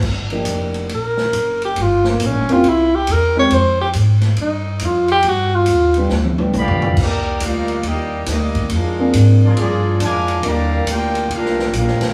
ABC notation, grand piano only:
X:1
M:4/4
L:1/8
Q:"Swing" 1/4=138
K:Cm
V:1 name="Grand piano"
z [F,B,DEG]3 z4 | z3 [B,C_D=EG] z3 [A,C_EFG] | z8 | z3 [G,=B,DFG] z [G,B,DFG] z2 |
z8 | z [B,CDFA]3 z4 | [B,DEFG] z6 z |]